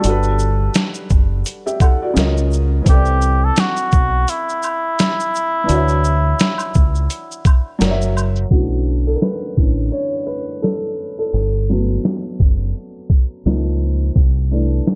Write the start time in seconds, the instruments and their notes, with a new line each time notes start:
Already playing: muted trumpet A4
0.00 felt piano G3 D4, closed hi-hat, shaker
0.04 fingered electric bass G1, felt piano F#4 A4, shaker
0.09 felt piano B4
0.23 shaker
0.39 shaker
0.74 snare, closed hi-hat, shaker
0.94 shaker
1.10 fingered electric bass F#1, kick, shaker
1.45 closed hi-hat, shaker
1.46 shaker
1.66 felt piano G4 E5, shaker
1.80 felt piano A4 F#5, kick, high woodblock, shaker
2.02 felt piano F#4 D5
2.14 fingered electric bass C#2, felt piano C#3 C#4 F4, snare, closed hi-hat, shaker
2.18 felt piano A#4 D#5
2.37 shaker
2.51 shaker
2.53 shaker
2.82 felt piano E3 C4
2.86 fingered electric bass C2, felt piano E4 A4, muted trumpet G4, kick, closed hi-hat, shaker
2.92 felt piano D5
3.05 shaker
3.21 shaker
3.44 muted trumpet A4
3.56 muted trumpet F#4, snare, closed hi-hat, shaker
3.77 shaker
3.92 fingered electric bass B1, kick, shaker
4.27 muted trumpet E4, closed hi-hat, shaker
4.49 shaker
4.63 high woodblock, shaker
4.64 shaker
4.99 snare, closed hi-hat, shaker
5.20 shaker
5.34 shaker
5.36 shaker
5.64 felt piano E3 D4
5.69 fingered electric bass D2, felt piano F#4 C#5, closed hi-hat, shaker
5.75 felt piano E5
5.88 shaker
6.04 shaker
6.39 snare, closed hi-hat, shaker
6.58 high woodblock, shaker
6.74 fingered electric bass C#2, kick, shaker
6.95 shaker
7.10 closed hi-hat, shaker
7.31 shaker
7.45 kick, high woodblock, shaker
7.47 shaker
7.79 fingered electric bass F#1, felt piano F#3 F#4 A#4 C#5, snare, closed hi-hat, shaker
7.84 felt piano D5
7.90 felt piano E5
8.02 shaker
8.17 high woodblock, shaker
8.36 shaker
8.51 fingered electric bass B1, felt piano D3 E3 A3 C#4 F#4, kick, closed hi-hat
9.07 felt piano A4
9.15 felt piano A#4
9.21 felt piano B4, snare, closed hi-hat
9.57 fingered electric bass A1, felt piano D3 E3 A3 C#4, kick
9.92 felt piano C#5, closed hi-hat
10.27 felt piano B4
10.62 felt piano A4, snare, closed hi-hat
11.19 felt piano A4
11.33 fingered electric bass G1, closed hi-hat
11.69 felt piano F#3 A3 B3
12.04 snare, closed hi-hat
12.40 fingered electric bass F#1, kick
12.75 closed hi-hat
13.10 kick
13.46 fingered electric bass C#2, felt piano F3 A#3 D#4, snare, closed hi-hat
14.16 fingered electric bass C2, kick, closed hi-hat
14.51 felt piano E3 A3 D4
14.86 snare, closed hi-hat